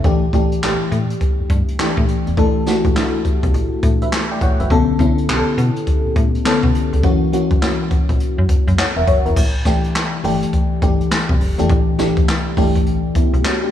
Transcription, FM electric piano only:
0.04 0.25 E3 medium
0.04 0.26 A3 medium
0.04 0.26 D4 medium
0.04 0.26 G4 loud
0.34 0.54 E3 medium
0.34 0.55 A3 medium
0.34 0.55 D4 medium
0.34 0.55 G4 medium
0.63 1.39 E3 medium
0.63 1.39 A3 medium
0.63 1.39 D4 medium
0.63 1.39 G4 medium
1.79 2.17 E3 medium
1.79 2.17 A3 medium
1.79 2.18 D4 medium
1.79 2.18 G4 loud
2.38 2.58 E3 medium
2.38 2.59 A3 medium
2.38 2.59 D4 medium
2.38 2.59 A4 loud
2.67 2.87 E3 medium
2.67 2.88 A3 medium
2.67 2.88 D4 medium
2.67 2.88 F#4 loud
2.96 3.72 E3 medium
2.96 3.72 A3 medium
2.96 3.72 D4 medium
2.96 3.05 E4 medium
3.03 3.76 F#4 medium
4.02 4.30 B4 medium
4.02 4.29 E5 medium
4.31 4.42 D5 medium
4.31 4.41 G5 medium
4.42 4.59 C#5 medium
4.42 4.59 F#5 medium
4.60 4.88 B4 soft
4.60 4.88 E5 medium
4.71 4.91 D3 medium
4.71 4.92 B3 medium
4.71 4.92 C#4 medium
4.71 4.92 A4 loud
5.00 5.20 D3 medium
5.00 5.21 B3 medium
5.00 5.21 C#4 medium
5.00 5.21 E4 medium
5.29 6.05 D3 medium
5.29 6.05 B3 medium
5.29 6.05 C#4 medium
5.29 5.38 G4 medium
5.37 6.09 A4 medium
6.45 6.83 D3 medium
6.45 6.83 B3 medium
6.45 6.84 C#4 medium
6.45 6.84 A4 loud
7.03 7.24 E3 medium
7.03 7.24 A#3 medium
7.03 7.25 C#4 medium
7.03 7.25 F#4 loud
7.32 7.53 E3 medium
7.32 7.54 A#3 medium
7.32 7.54 C#4 medium
7.32 7.54 F#4 medium
7.61 8.38 E3 medium
7.61 8.38 A#3 medium
7.61 8.38 C#4 medium
7.61 8.38 F#4 medium
8.79 8.96 C#5 medium
8.79 8.96 F#5 medium
8.97 9.07 A#4 medium
8.97 9.07 E5 medium
9.08 9.25 F#4 medium
9.08 9.25 C#5 medium
9.26 9.54 E4 medium
9.26 9.53 A#4 medium
9.65 10.04 E3 medium
9.65 10.04 A3 medium
9.65 10.04 D4 medium
9.65 10.04 G4 medium
10.24 10.62 E3 medium
10.24 10.62 A3 medium
10.24 10.62 D4 medium
10.24 10.62 G4 loud
10.82 11.31 E3 medium
10.82 11.31 A3 medium
10.82 11.31 D4 medium
10.82 11.31 G4 medium
11.58 11.85 E3 medium
11.58 11.85 A3 medium
11.58 11.86 D4 medium
11.58 11.86 G4 loud
11.98 12.37 E3 medium
11.98 12.37 A3 medium
11.98 12.37 D4 medium
11.98 12.37 G4 medium
12.57 12.95 E3 loud
12.57 12.95 A3 medium
12.57 12.95 D4 medium
12.57 12.96 G4 loud
13.16 13.43 B3 medium
13.16 13.43 E4 medium
13.45 13.62 C#4 medium
13.45 13.62 F#4 medium
13.63 13.71 D4 medium
13.63 13.71 G4 medium

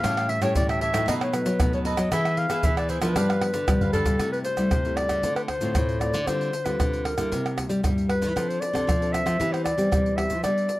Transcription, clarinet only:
0.00 0.31 F5 loud
0.29 0.42 E5 medium
0.42 0.55 C#5 loud
0.56 0.68 D5 loud
0.70 0.81 E5 loud
0.81 1.06 E5 loud
1.09 1.14 D#5 loud
1.22 1.35 C#5 medium
1.34 1.73 B4 medium
1.74 1.80 C#5 medium
1.86 2.14 D#5 medium
2.12 2.40 E5 loud
2.38 2.66 F5 medium
2.64 2.77 E5 loud
2.78 2.91 D5 medium
2.89 3.01 C5 medium
3.02 3.89 B4 medium
3.93 4.30 A4 medium
4.32 4.38 B4 medium
4.45 4.98 C5 loud
4.96 5.35 D5 loud
5.36 5.42 B4 medium
5.48 6.01 C5 medium
6.00 6.28 D5 loud
6.27 6.66 C5 loud
6.65 7.06 B4 medium
7.04 7.57 A#4 medium
8.09 8.51 B4 medium
8.49 8.62 C5 medium
8.61 9.14 D5 medium
9.12 9.54 E5 loud
9.53 9.64 C5 medium
9.64 10.18 D5 loud
10.17 10.43 E5 medium
10.43 10.80 D5 loud

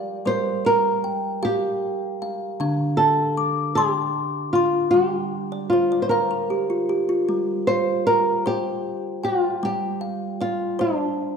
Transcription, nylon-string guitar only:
0.00 0.27 D5 medium
0.27 0.66 C5 medium
0.66 1.44 A#4 medium
1.45 2.28 G4 medium
2.97 3.75 A4 medium
3.75 4.50 G4 medium
4.53 4.90 F4 medium
4.91 5.69 G4 medium
5.70 6.02 F4 medium
6.02 6.09 C5 medium
6.09 6.94 A#4 medium
7.67 8.04 C5 medium
8.07 8.43 A#4 medium
8.47 9.24 G4 medium
9.24 9.64 F4 medium
9.65 10.41 G4 medium
10.41 10.81 F4 medium
10.81 11.37 D4 medium

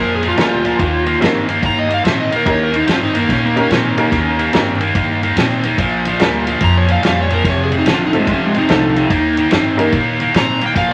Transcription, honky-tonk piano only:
0.37 0.79 A#3 medium
0.37 0.79 D4 medium
0.37 0.79 F4 medium
0.37 0.80 G#4 medium
0.37 0.79 A#4 medium
1.20 1.45 A#3 medium
1.20 1.45 C#4 medium
1.20 1.46 D#4 medium
1.20 1.46 G4 medium
1.20 1.46 A#4 medium
2.46 2.70 A#3 medium
2.46 2.70 C#4 medium
2.46 2.70 D#4 medium
2.46 2.71 G4 medium
2.46 2.71 A#4 medium
3.56 3.95 A#3 medium
3.56 3.95 C#4 medium
3.56 3.95 D#4 medium
3.56 3.95 G4 medium
3.56 3.95 A#4 medium
3.98 4.51 A#3 medium
3.98 4.51 C#4 medium
3.98 4.51 D#4 medium
3.98 4.51 G4 medium
3.98 4.51 A#4 medium
4.53 4.78 A#3 medium
4.53 4.78 C#4 medium
4.53 4.78 D#4 medium
4.53 4.78 G4 medium
4.53 4.78 A#4 medium
6.20 6.44 A#3 medium
6.20 6.44 D4 medium
6.20 6.44 F4 medium
6.20 6.44 G#4 medium
6.20 6.44 A#4 medium
8.13 8.26 A3 medium
8.13 8.26 C4 medium
8.13 8.26 D#4 medium
8.13 8.26 F4 medium
8.13 8.26 A4 medium
8.69 9.10 A3 medium
8.69 9.10 C4 medium
8.69 9.10 D#4 medium
8.69 9.11 F4 medium
8.69 9.10 A4 medium
9.77 9.91 A#3 medium
9.77 9.91 C#4 medium
9.77 9.91 D#4 medium
9.77 9.91 G4 medium
9.77 9.91 A#4 medium

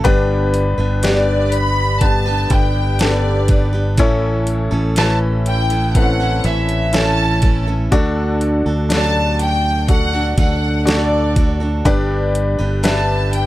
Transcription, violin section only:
1.05 1.50 D5 medium
1.52 2.02 B5 loud
2.02 2.51 A5 medium
2.53 3.01 G5 medium
3.03 3.75 D5 medium
4.98 5.18 A5 loud
5.47 5.92 G5 medium
5.97 6.45 F#5 medium
6.47 6.95 E5 medium
6.97 7.65 A5 medium
8.93 9.38 A5 loud
9.43 9.90 G5 loud
9.91 10.35 F#5 loud
10.39 10.84 F#5 medium
10.88 11.61 D5 medium
12.86 13.31 A5 medium
13.34 13.46 G5 medium

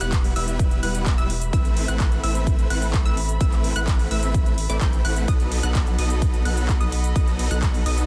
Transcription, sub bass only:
0.01 0.34 E1 loud
0.36 0.81 E1 loud
0.83 1.16 E1 loud
1.18 1.51 E1 loud
1.53 1.86 A1 loud
1.88 2.21 A1 loud
2.24 2.68 A1 loud
2.70 3.03 A1 loud
3.06 3.38 A1 loud
3.41 3.73 A1 loud
3.76 4.09 A1 loud
4.11 4.67 A1 loud
4.70 4.79 A1 loud
4.81 5.02 A1 loud
5.05 5.26 A1 loud
5.28 5.61 B1 loud
5.63 5.96 B1 loud
5.98 6.43 B1 loud
6.45 6.78 B1 loud
6.80 7.13 B1 medium
7.16 7.49 B1 medium
7.51 7.84 B1 loud
7.86 8.06 B1 medium

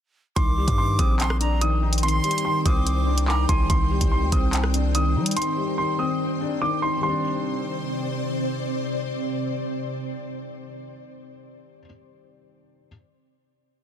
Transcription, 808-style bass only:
0.36 0.66 C2 loud
0.68 0.98 G2 loud
0.99 2.20 A#1 loud
2.66 3.46 C2 loud
3.49 3.69 C2 loud
3.70 4.00 C2 loud
4.01 4.23 C2 loud
4.22 4.32 D2 loud
4.32 5.17 C2 loud
5.16 5.35 G3 loud

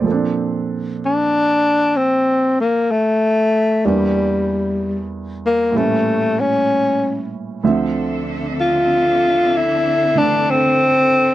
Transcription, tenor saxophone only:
1.05 1.98 D4 medium
1.97 2.59 C4 medium
2.61 2.93 A#3 medium
2.91 3.87 A3 medium
3.86 5.07 G3 medium
5.46 5.79 A#3 medium
5.77 6.41 A3 medium
6.40 7.33 C#4 medium
8.61 9.59 F4 medium
9.57 10.19 E4 medium
10.18 10.52 D4 medium
10.50 11.35 C4 medium

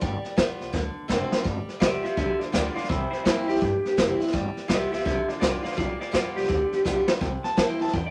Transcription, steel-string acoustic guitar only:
0.01 0.35 G3 loud
0.37 0.72 G3 medium
0.37 0.72 B3 medium
0.37 0.72 F4 loud
0.73 1.07 D3 medium
1.08 1.43 D3 medium
1.08 1.44 A3 medium
1.08 1.44 C4 medium
1.08 1.44 F#4 medium
1.44 1.79 G3 medium
1.80 2.03 G3 loud
1.80 2.03 B3 medium
1.80 2.01 F4 loud
2.03 2.17 B3 soft
2.03 2.16 F4 medium
2.17 2.87 D3 medium
2.52 2.75 G3 medium
2.52 2.75 B3 medium
2.52 2.74 F4 loud
2.76 2.89 B3 soft
2.76 2.89 F4 medium
2.89 3.59 C3 medium
3.25 3.47 E3 medium
3.25 3.47 A#3 loud
3.25 3.48 C4 loud
3.25 3.47 E4 loud
3.48 3.61 C4 soft
3.48 3.61 E4 medium
3.61 4.31 G2 medium
3.97 4.19 E3 medium
3.97 4.19 A#3 medium
3.97 4.20 C4 medium
3.97 4.19 E4 loud
4.20 4.34 C4 medium
4.20 4.33 E4 medium
4.33 4.67 G3 loud
4.68 4.91 G3 medium
4.68 4.91 B3 medium
4.68 4.90 F4 loud
4.92 5.06 B3 soft
4.92 5.05 F4 medium
5.05 5.75 D3 medium
5.41 5.63 G3 medium
5.41 5.63 B3 medium
5.41 5.62 F4 loud
5.63 5.77 B3 soft
5.63 5.76 F4 medium
5.77 6.10 G3 medium
6.12 6.47 G3 medium
6.12 6.48 B3 loud
6.12 6.48 F4 loud
6.48 7.18 D3 loud
6.85 7.07 G3 medium
6.85 7.07 B3 medium
6.85 7.06 F4 loud
7.08 7.21 B3 soft
7.08 7.21 F4 medium
7.21 7.90 C3 loud
7.57 7.79 E3 medium
7.57 7.79 A#3 medium
7.57 7.79 C4 medium
7.57 7.78 E4 medium
7.79 7.93 C4 soft
7.79 7.93 E4 medium
7.93 8.11 G2 medium

